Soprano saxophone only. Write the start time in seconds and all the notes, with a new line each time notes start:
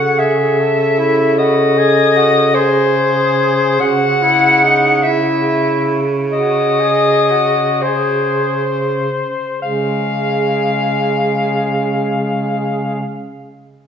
Already playing: F#5
0.19 E5
1.38 D#5
2.55 C5
3.80 F#5
5.03 E5
6.32 D#5
7.81 C5
9.62 F5